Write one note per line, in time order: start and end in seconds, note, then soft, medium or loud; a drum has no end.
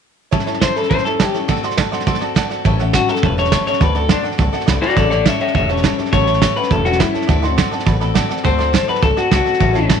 0.31 0.47 A2 medium
0.31 0.47 E3 medium
0.31 0.47 G3 medium
0.31 0.47 C#4 medium
0.31 0.46 E4 loud
0.31 0.45 A4 medium
0.31 0.41 C#5 loud
0.31 0.41 E5 medium
0.31 0.41 A5 loud
0.31 kick loud
0.31 snare soft
0.40 snare soft
0.46 0.60 G3 soft
0.46 0.61 C#4 medium
0.46 0.61 E4 medium
0.46 0.61 A4 medium
0.46 0.55 C#5 loud
0.46 0.55 E5 medium
0.46 0.56 A5 loud
0.46 snare soft
0.54 snare soft
0.61 0.76 G3 medium
0.61 0.76 C#4 medium
0.61 0.76 E4 medium
0.61 0.75 A4 medium
0.61 0.76 C5 medium
0.61 0.70 C#5 medium
0.61 0.70 E5 medium
0.61 0.70 A5 medium
0.61 kick medium
0.61 snare loud
0.61 hi-hat pedal medium
0.75 0.90 G3 soft
0.75 0.91 C#4 soft
0.75 0.91 E4 soft
0.75 0.91 A4 medium
0.75 0.89 A4 medium
0.75 0.85 C#5 medium
0.75 0.85 E5 medium
0.75 0.85 B5 medium
0.75 snare soft
0.84 snare soft
0.90 1.05 A2 medium
0.90 1.06 E3 medium
0.90 1.06 G3 medium
0.90 1.05 C#4 medium
0.90 1.05 E4 medium
0.90 1.04 A4 medium
0.90 1.04 C5 medium
0.90 0.99 C#5 medium
0.90 0.99 E5 medium
0.90 1.00 A5 medium
0.90 kick loud
0.90 snare soft
0.98 snare soft
1.04 1.19 G3 soft
1.04 1.19 C#4 soft
1.04 1.20 E4 soft
1.04 1.20 A4 medium
1.04 1.21 A4 medium
1.04 1.14 C#5 medium
1.04 1.14 E5 medium
1.04 1.14 A5 medium
1.04 snare soft
1.19 1.35 G3 medium
1.19 1.34 C#4 medium
1.19 1.33 E4 medium
1.19 1.34 G4 medium
1.19 1.33 A4 medium
1.19 1.28 C#5 medium
1.19 1.28 E5 medium
1.19 1.29 A5 medium
1.19 kick medium
1.19 snare loud
1.19 hi-hat pedal medium
1.33 1.48 G3 soft
1.33 1.48 C#4 soft
1.33 1.48 E4 soft
1.33 1.48 A4 medium
1.33 1.43 C#5 medium
1.33 1.43 E5 medium
1.33 1.43 A5 medium
1.33 snare soft
1.48 1.63 D3 medium
1.48 1.63 A3 medium
1.48 1.63 C4 loud
1.48 1.63 F#4 loud
1.48 1.62 A4 loud
1.48 1.57 D5 loud
1.48 1.57 F#5 loud
1.48 1.58 A5 loud
1.48 kick loud
1.48 snare soft
1.56 snare soft
1.63 1.76 C4 soft
1.63 1.77 F#4 medium
1.63 1.78 A4 medium
1.63 1.72 D5 loud
1.63 1.72 F#5 medium
1.63 1.73 C6 loud
1.63 snare soft
1.71 snare soft
1.77 1.92 A3 medium
1.77 1.92 C4 medium
1.77 1.92 F#4 medium
1.77 1.91 A4 medium
1.77 1.87 D5 medium
1.77 1.87 F#5 medium
1.77 1.87 A5 loud
1.77 kick medium
1.77 snare loud
1.77 hi-hat pedal medium
1.91 2.06 C4 soft
1.91 2.06 F#4 medium
1.91 2.06 A4 medium
1.91 2.01 D5 medium
1.91 2.01 F#5 medium
1.91 2.01 C6 medium
1.91 snare soft
2.00 snare soft
2.06 2.21 D3 medium
2.06 2.21 A3 medium
2.06 2.21 C4 medium
2.06 2.20 F#4 medium
2.06 2.19 A4 medium
2.06 2.15 D5 medium
2.06 2.16 F#5 medium
2.06 2.16 C6 loud
2.06 kick loud
2.06 snare soft
2.15 snare soft
2.20 2.34 C4 medium
2.20 2.35 F#4 medium
2.20 2.35 A4 medium
2.20 2.30 D5 medium
2.20 2.30 F#5 medium
2.20 2.30 A5 medium
2.20 snare soft
2.35 2.50 A3 medium
2.35 2.50 C4 medium
2.35 2.50 F#4 medium
2.35 2.48 A4 medium
2.35 2.45 D5 medium
2.35 2.45 F#5 medium
2.35 2.45 A5 loud
2.35 kick medium
2.35 snare loud
2.35 hi-hat pedal medium
2.50 2.65 C4 soft
2.50 2.65 F#4 medium
2.50 2.65 A4 medium
2.50 2.59 D5 medium
2.50 2.59 F#5 medium
2.50 2.59 A5 medium
2.50 snare soft
2.65 2.96 A1 medium
2.65 2.79 A2 medium
2.65 2.80 E3 medium
2.65 2.80 G3 medium
2.65 2.80 C#4 medium
2.65 2.79 G4 medium
2.65 2.78 A4 medium
2.65 2.73 C#5 loud
2.65 2.74 E5 medium
2.65 2.74 A5 loud
2.65 kick loud
2.65 snare soft
2.79 2.94 G3 soft
2.79 2.94 C#4 soft
2.79 2.94 G4 medium
2.79 2.94 A4 medium
2.79 2.88 C#5 loud
2.79 2.88 E5 loud
2.79 2.88 F#5 loud
2.79 snare soft
2.93 3.08 A2 medium
2.93 3.09 E3 medium
2.93 3.09 G3 medium
2.93 3.09 C#4 medium
2.93 3.09 F#4 medium
2.93 3.09 G4 medium
2.93 3.08 A4 medium
2.93 3.02 C#5 medium
2.93 3.03 E5 medium
2.93 3.03 A5 medium
2.93 kick medium
2.93 snare loud
2.93 hi-hat pedal medium
3.08 3.23 G3 soft
3.08 3.23 C#4 soft
3.08 3.24 G4 soft
3.08 3.24 A4 medium
3.08 3.17 C#5 medium
3.08 3.17 E5 medium
3.08 3.18 F#5 medium
3.08 muted upright bass stroke medium
3.08 snare soft
3.16 snare soft
3.23 3.53 E1 medium
3.23 3.38 G3 medium
3.23 3.38 C#4 medium
3.23 3.37 G4 medium
3.23 3.37 A4 medium
3.23 3.38 B4 medium
3.23 3.31 C#5 medium
3.23 3.32 E5 medium
3.23 3.32 A5 medium
3.23 kick loud
3.23 snare soft
3.37 3.52 G3 soft
3.37 3.52 C#4 soft
3.37 3.53 G4 medium
3.37 3.52 A4 medium
3.37 3.46 C#5 medium
3.37 3.66 C#5 medium
3.37 3.46 E5 medium
3.37 3.46 A5 medium
3.37 snare soft
3.45 snare soft
3.51 3.67 A2 medium
3.51 3.67 E3 medium
3.51 3.67 G3 medium
3.51 3.67 C#4 medium
3.51 3.66 G4 medium
3.51 3.66 A4 medium
3.51 3.60 C#5 medium
3.51 3.61 E5 medium
3.51 3.61 A5 medium
3.51 kick medium
3.51 snare loud
3.51 hi-hat pedal medium
3.66 3.81 G3 soft
3.66 3.82 C#4 soft
3.66 3.82 G4 medium
3.66 3.81 A4 medium
3.66 3.75 C#5 medium
3.66 3.82 C#5 medium
3.66 3.75 E5 medium
3.66 3.75 A5 medium
3.66 muted upright bass stroke medium
3.66 snare soft
3.73 snare soft
3.80 4.11 D2 medium
3.80 3.96 D3 medium
3.80 3.96 A3 medium
3.80 3.96 C4 medium
3.80 3.95 F#4 medium
3.80 3.94 A4 medium
3.80 3.97 B4 medium
3.80 3.89 D5 loud
3.80 3.90 F#5 medium
3.80 3.90 A5 loud
3.80 kick loud
3.80 snare soft
3.95 4.09 C4 soft
3.95 4.09 F#4 soft
3.95 4.09 A4 medium
3.95 4.10 A4 medium
3.95 4.04 D5 medium
3.95 4.04 F#5 medium
3.95 4.04 A5 loud
3.95 snare soft
4.08 4.24 D3 medium
4.08 4.24 A3 medium
4.08 4.25 C4 medium
4.08 4.24 D4 medium
4.08 4.24 F#4 medium
4.08 4.23 A4 medium
4.08 4.18 D5 medium
4.08 4.18 F#5 medium
4.08 4.18 C6 medium
4.08 kick medium
4.08 snare loud
4.08 hi-hat pedal medium
4.23 4.37 C4 soft
4.23 4.38 F#4 soft
4.23 4.39 A4 medium
4.23 4.32 D5 medium
4.23 4.33 F#5 medium
4.23 4.33 A5 medium
4.23 muted upright bass stroke medium
4.23 snare soft
4.32 snare soft
4.38 4.51 C2 medium
4.38 4.53 A3 medium
4.38 4.53 C4 medium
4.38 4.52 F#4 medium
4.38 4.51 A4 medium
4.38 4.47 D5 medium
4.38 4.48 F#5 medium
4.38 4.48 A5 medium
4.38 kick loud
4.38 snare soft
4.52 4.67 C4 medium
4.52 4.67 F#4 medium
4.52 4.67 A4 medium
4.52 4.62 D5 medium
4.52 4.62 F#5 medium
4.52 4.62 A5 loud
4.52 muted upright bass stroke medium
4.52 snare soft
4.61 snare soft
4.66 4.80 B1 medium
4.66 4.82 D3 medium
4.66 4.82 A3 medium
4.66 4.83 C4 medium
4.66 4.82 F#4 medium
4.66 4.81 A4 medium
4.66 4.76 D5 loud
4.66 4.76 F#5 medium
4.66 4.76 B5 loud
4.66 kick medium
4.66 snare loud
4.66 hi-hat pedal medium
4.81 4.97 C4 soft
4.81 4.97 F#4 medium
4.81 4.97 F#4 soft
4.81 4.97 A4 medium
4.81 4.90 D5 medium
4.81 4.96 D5 loud
4.81 4.91 F#5 medium
4.81 4.91 B5 medium
4.81 snare soft
4.90 snare soft
4.96 5.27 A1 medium
4.96 5.11 A2 medium
4.96 5.11 E3 medium
4.96 5.11 G3 medium
4.96 5.11 C#4 loud
4.96 5.10 G4 medium
4.96 5.09 A4 medium
4.96 5.10 A4 medium
4.96 5.05 C#5 loud
4.96 5.10 D5 medium
4.96 5.05 E5 medium
4.96 5.05 A5 loud
4.96 kick loud
4.96 snare soft
5.10 5.24 G3 soft
5.10 5.25 C#4 soft
5.10 5.25 G4 soft
5.10 5.26 A4 medium
5.10 5.20 C#5 loud
5.10 5.26 D5 medium
5.10 5.20 E5 medium
5.10 5.20 A5 loud
5.10 snare soft
5.25 5.40 A2 medium
5.25 5.40 E3 medium
5.25 5.40 G3 medium
5.25 5.39 C#4 medium
5.25 5.39 G4 medium
5.25 5.38 A4 medium
5.25 5.34 C#5 medium
5.25 5.40 C#5 medium
5.25 5.34 E5 medium
5.25 5.40 E5 medium
5.25 5.35 A5 medium
5.25 kick medium
5.25 snare loud
5.25 hi-hat pedal medium
5.39 5.52 G3 soft
5.39 5.53 C#4 soft
5.39 5.53 G4 soft
5.39 5.54 A4 medium
5.39 5.48 C#5 medium
5.39 5.53 C#5 medium
5.39 5.48 E5 medium
5.39 5.54 E5 loud
5.39 5.49 A5 medium
5.39 muted upright bass stroke medium
5.39 snare soft
5.48 snare soft
5.54 5.85 E1 medium
5.54 5.69 G3 medium
5.54 5.69 C#4 medium
5.54 5.68 G4 medium
5.54 5.67 A4 medium
5.54 5.63 C#5 medium
5.54 5.68 C#5 medium
5.54 5.63 E5 medium
5.54 5.70 E5 medium
5.54 5.63 A5 medium
5.54 kick loud
5.54 snare soft
5.68 5.83 G3 soft
5.68 5.83 C#4 soft
5.68 5.83 G4 medium
5.68 5.83 A4 medium
5.68 5.77 C#5 medium
5.68 5.98 C#5 medium
5.68 5.78 E5 medium
5.68 5.78 A5 medium
5.68 snare soft
5.77 snare soft
5.83 5.98 A2 medium
5.83 5.98 E3 medium
5.83 5.98 G3 medium
5.83 5.98 C#4 medium
5.83 5.98 G4 medium
5.83 5.97 A4 medium
5.83 5.92 C#5 medium
5.83 5.92 E5 medium
5.83 5.93 A5 loud
5.83 kick medium
5.83 snare loud
5.83 hi-hat pedal medium
5.97 6.12 G3 soft
5.97 6.12 C#4 soft
5.97 6.13 G4 soft
5.97 6.13 A4 medium
5.97 6.07 C#5 medium
5.97 6.07 E5 medium
5.97 6.07 A5 medium
5.97 muted upright bass stroke medium
5.97 snare soft
6.06 snare soft
6.12 6.43 A1 medium
6.12 6.27 A2 medium
6.12 6.27 E3 medium
6.12 6.28 G3 medium
6.12 6.27 C#4 medium
6.12 6.27 G4 medium
6.12 6.26 A4 medium
6.12 6.21 C#5 medium
6.12 6.55 C#5 loud
6.12 6.21 E5 medium
6.12 6.21 A5 loud
6.12 kick loud
6.12 snare soft
6.27 6.41 G3 soft
6.27 6.41 C#4 soft
6.27 6.41 G4 soft
6.27 6.41 A4 medium
6.27 6.36 C#5 medium
6.27 6.36 E5 medium
6.27 6.36 A5 loud
6.27 snare soft
6.34 snare soft
6.41 6.56 A2 medium
6.41 6.56 E3 medium
6.41 6.56 G3 medium
6.41 6.56 C#4 medium
6.41 6.56 G4 medium
6.41 6.55 A4 medium
6.41 6.50 C#5 medium
6.41 6.51 E5 medium
6.41 6.51 A5 medium
6.41 kick medium
6.41 snare loud
6.41 hi-hat pedal medium
6.56 6.69 G3 soft
6.56 6.70 C#4 soft
6.56 6.71 G4 soft
6.56 6.71 A4 soft
6.56 6.72 B4 medium
6.56 6.65 C#5 medium
6.56 6.65 E5 medium
6.56 6.65 F#5 medium
6.56 muted upright bass stroke medium
6.56 snare soft
6.63 snare soft
6.70 7.01 E1 medium
6.70 6.85 G3 medium
6.70 6.86 C#4 medium
6.70 6.85 G4 medium
6.70 6.85 A4 medium
6.70 6.84 A4 medium
6.70 6.79 C#5 medium
6.70 6.80 E5 medium
6.70 6.80 A5 medium
6.70 kick loud
6.70 snare soft
6.84 7.00 G3 soft
6.84 7.00 C#4 medium
6.84 7.00 F#4 medium
6.84 7.00 G4 soft
6.84 7.00 A4 medium
6.84 6.94 C#5 medium
6.84 6.94 E5 medium
6.84 6.94 A5 medium
6.84 snare soft
6.92 snare soft
6.99 7.14 A2 medium
6.99 7.15 E3 medium
6.99 7.15 G3 medium
6.99 7.15 C#4 medium
6.99 7.56 E4 loud
6.99 7.14 G4 medium
6.99 7.13 A4 medium
6.99 7.08 C#5 medium
6.99 7.08 E5 medium
6.99 7.08 B5 loud
6.99 kick medium
6.99 snare loud
6.99 hi-hat pedal medium
7.13 7.29 G3 soft
7.13 7.29 C#4 soft
7.13 7.29 G4 medium
7.13 7.29 A4 medium
7.13 7.22 C#5 medium
7.13 7.23 E5 medium
7.13 7.23 A5 medium
7.13 muted upright bass stroke medium
7.13 snare soft
7.22 snare soft
7.27 7.59 D2 medium
7.27 7.43 D3 medium
7.27 7.43 A3 medium
7.27 7.44 C4 medium
7.27 7.43 F#4 medium
7.27 7.42 A4 loud
7.27 7.37 D5 medium
7.27 7.37 F#5 medium
7.27 7.37 A5 loud
7.27 kick loud
7.27 snare soft
7.42 7.57 C4 soft
7.42 7.57 F#4 medium
7.42 7.58 A4 medium
7.42 7.51 D5 loud
7.42 7.51 F#5 medium
7.42 7.52 C6 loud
7.42 snare soft
7.57 7.72 D3 medium
7.57 7.72 A3 medium
7.57 7.73 C4 medium
7.57 7.73 F#4 medium
7.57 7.71 A4 loud
7.57 7.66 D5 medium
7.57 7.66 F#5 medium
7.57 7.66 C6 loud
7.57 kick medium
7.57 snare loud
7.57 hi-hat pedal medium
7.71 7.87 C4 soft
7.71 7.87 F#4 medium
7.71 7.87 A4 medium
7.71 7.80 D5 medium
7.71 7.81 F#5 medium
7.71 7.81 A5 loud
7.71 muted upright bass stroke medium
7.71 snare soft
7.79 snare soft
7.86 8.17 A1 medium
7.86 8.01 A3 medium
7.86 8.02 C4 medium
7.86 8.01 F#4 medium
7.86 8.00 A4 medium
7.86 7.95 D5 medium
7.86 7.95 F#5 medium
7.86 7.95 B5 medium
7.86 kick loud
7.86 snare soft
8.00 8.15 C4 medium
8.00 8.15 F#4 soft
8.00 8.15 A4 medium
8.00 8.09 D5 medium
8.00 8.10 F#5 medium
8.00 8.10 B5 loud
8.00 snare soft
8.14 8.30 D3 medium
8.14 8.30 A3 medium
8.14 8.30 C4 medium
8.14 8.30 F#4 medium
8.14 8.29 A4 medium
8.14 8.23 D5 loud
8.14 8.24 F#5 medium
8.14 8.24 A5 loud
8.14 kick medium
8.14 snare loud
8.14 hi-hat pedal medium
8.29 8.44 C4 medium
8.29 8.44 F#4 medium
8.29 8.45 A4 medium
8.29 8.38 D5 medium
8.29 8.38 F#5 medium
8.29 8.39 A5 loud
8.29 muted upright bass stroke medium
8.29 snare soft
8.38 snare soft
8.43 8.75 D2 medium
8.43 8.59 D3 medium
8.43 8.59 A3 medium
8.43 8.59 C4 medium
8.43 8.59 F#4 medium
8.43 8.58 A4 medium
8.43 8.87 C5 loud
8.43 8.53 D5 medium
8.43 8.53 F#5 medium
8.43 8.53 A5 loud
8.43 kick loud
8.43 snare soft
8.58 8.72 C4 soft
8.58 8.73 F#4 soft
8.58 8.73 A4 medium
8.58 8.67 D5 medium
8.58 8.67 F#5 medium
8.58 8.68 C6 loud
8.58 snare soft
8.72 8.88 D3 medium
8.72 8.88 A3 medium
8.72 8.88 C4 medium
8.72 8.88 F#4 medium
8.72 8.87 A4 medium
8.72 8.82 D5 medium
8.72 8.82 F#5 medium
8.72 8.82 A5 medium
8.72 kick medium
8.72 snare loud
8.72 hi-hat pedal medium
8.87 9.01 C4 soft
8.87 9.02 F#4 medium
8.87 9.03 A4 medium
8.87 9.03 B4 medium
8.87 8.96 D5 medium
8.87 8.97 F#5 medium
8.87 8.97 A5 medium
8.87 muted upright bass stroke medium
8.87 snare soft
8.96 snare soft
9.01 9.15 C2 medium
9.01 9.17 A3 medium
9.01 9.17 C4 medium
9.01 9.17 F#4 medium
9.01 9.17 A4 medium
9.01 9.16 A4 medium
9.01 9.11 D5 medium
9.01 9.11 F#5 medium
9.01 9.11 A5 medium
9.01 kick loud
9.01 snare soft
9.16 9.31 C4 soft
9.16 9.30 F#4 medium
9.16 9.31 F#4 medium
9.16 9.32 A4 medium
9.16 9.25 D5 medium
9.16 9.26 F#5 medium
9.16 9.26 A5 medium
9.16 snare soft
9.31 9.44 B1 medium
9.31 9.46 D3 medium
9.31 9.46 A3 medium
9.31 9.46 C4 medium
9.31 9.88 F#4 loud
9.31 9.46 F#4 medium
9.31 9.45 A4 medium
9.31 9.40 D5 medium
9.31 9.40 F#5 medium
9.31 9.40 A5 loud
9.31 kick medium
9.31 snare loud
9.31 hi-hat pedal medium
9.45 9.60 C4 soft
9.45 9.61 F#4 medium
9.45 9.60 A4 medium
9.45 9.54 D5 medium
9.45 9.54 F#5 medium
9.45 9.54 A5 medium
9.45 snare soft
9.54 snare soft
9.59 9.91 A1 medium
9.59 9.75 A2 medium
9.59 9.75 E3 medium
9.59 9.75 G3 medium
9.59 9.75 C#4 medium
9.59 9.75 E4 medium
9.59 9.74 A4 medium
9.59 9.69 C#5 medium
9.59 9.69 E5 medium
9.59 9.69 A5 loud
9.59 kick loud
9.59 snare soft
9.73 9.89 G3 soft
9.73 9.89 C#4 medium
9.73 9.90 E4 medium
9.73 9.90 A4 medium
9.73 9.83 C#5 loud
9.73 9.83 E5 medium
9.73 9.83 A5 loud
9.73 snare soft
9.88 10.00 A2 medium
9.88 10.00 E3 medium
9.88 10.00 G3 medium
9.88 10.00 C#4 medium
9.88 10.00 E4 loud
9.88 10.00 A4 medium
9.88 9.97 C#5 medium
9.88 9.98 E5 medium
9.88 9.98 A5 medium
9.88 kick medium
9.88 snare loud
9.88 hi-hat pedal medium